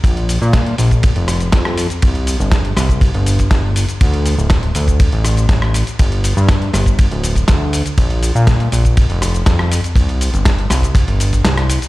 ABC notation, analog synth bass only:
X:1
M:4/4
L:1/16
Q:1/4=121
K:Bblyd
V:1 name="Analog synth bass" clef=bass
B,,,3 B,,3 B,,,3 F,,,3 F,,3 z | C,,3 G,,,3 C,,3 G,,,3 G,,,3 z | D,,3 D,,,3 D,,3 A,,,3 A,,,3 z | G,,,3 G,,3 G,,,3 D,,,3 D,,3 z |
B,,,3 B,,3 B,,,3 F,,,3 F,,3 z | C,,3 G,,,3 C,,3 G,,,3 C,,3 z |]